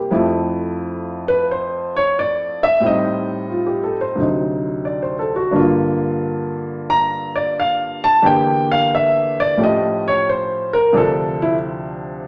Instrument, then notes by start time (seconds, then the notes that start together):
upright piano
Already playing: G3 A#3 E4 G4
0.11 F2 F3 A3 E4
1.28 B4
1.51 C5
1.96 C#5
2.19 D5
2.63 E5
2.80 A2 G3 C4
2.85 D#4 D#5
3.50 F4
3.66 G4
3.84 A4
4.01 C5
4.15 D2 C3 F#3
4.20 D#4
4.85 D5
5.02 C5
5.19 A4
5.36 F#4
5.51 G2 D3 A#3
5.56 F4
6.90 A#5
7.36 D5
7.60 F5
8.04 A5
8.22 E2 D3 A#3 G4
8.26 G5
8.72 F5
8.95 E5
9.40 D5
9.57 A2 F3 A3 C#4 G4
9.64 D#5
10.08 C#5
10.29 C5
10.73 A#4
10.92 D2 C3 F3 D4 G#4
10.97 A4
11.42 E4